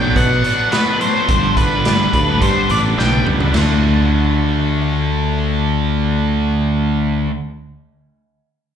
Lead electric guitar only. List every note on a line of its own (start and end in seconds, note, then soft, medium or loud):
0.00 0.16 G5 loud
0.17 0.74 F#5 medium
0.73 0.99 B4 medium
1.02 1.53 C5 medium
1.57 2.42 B4 medium
2.42 2.71 C5 medium
2.71 2.78 D5 medium
2.99 3.25 G5 medium